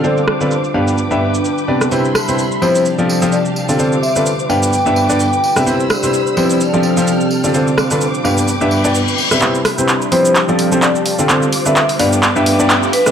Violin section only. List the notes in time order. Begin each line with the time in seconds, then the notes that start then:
0.04 C5 F5 D6
0.74 B4 G5 D6
1.92 E5 B5 C6
2.85 G4 F5 A5
3.79 C5 D6
4.50 B4 G5 D6
5.67 C5 B5 E6
6.60 A4 G5 F6
7.54 C5 F5 D6
8.24 B4 G5
9.42 E5 B5 C6
10.35 G4 F5 A5
11.29 C5 D6
11.99 B4 G5 D6